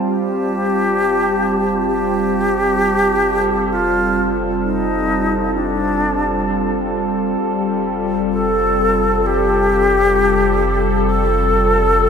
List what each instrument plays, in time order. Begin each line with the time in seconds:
Already playing: analog synth pad G3 C4 F4 G4
0.02 sub bass F1, glass harmonica A5
0.07 alto flute G4
1.87 alto flute G4
3.21 analog synth pad A4
3.73 alto flute F4
4.64 alto flute D#4
5.55 alto flute D4
7.41 sub bass F1, analog synth pad G3
8.33 alto flute A4
9.26 alto flute G4
11.09 alto flute A4